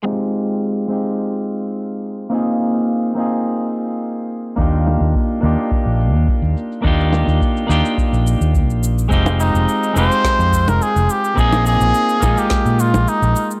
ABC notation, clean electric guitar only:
X:1
M:4/4
L:1/8
Q:1/4=106
K:Fdor
V:1 name="Clean electric guitar"
[A,CEF]3 [A,CEFG]4- [A,CEFG] | [B,CEFA]3 [B,CEFA]4- [B,CEFA] | [B,DEFG]3 [B,DEFG]4- [B,DEFG] | [B,DEFG]3 [B,DEFG]4- [B,DEFG] |
[A,CEFG]3 [A,CEFG]4- [A,CEFG] | [B,CEFA]3 [A,B,CEF]4- [A,B,CEF] |]